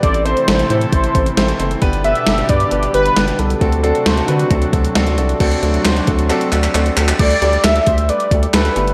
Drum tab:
CC |----------------|----------------|----------------|x---------------|
HH |xxxxxxxxxxxxxxxx|xxxxxxxxxxxxxxxx|xxxxxxxxxxxxxxxx|xxxxxxxxxxxxxxxx|
CP |----------------|----------------|----------------|----x---x-xxx-xx|
SD |----o-------o---|----o-------o---|----o-------o---|----o-----------|
BD |o-------o-o-----|o-----o---------|o-------o-o-----|o-----o---------|

CC |x---------------|
HH |xxxxxxxxxxxxxxxx|
CP |----x-------x---|
SD |----o-------o---|
BD |o-----o---o-----|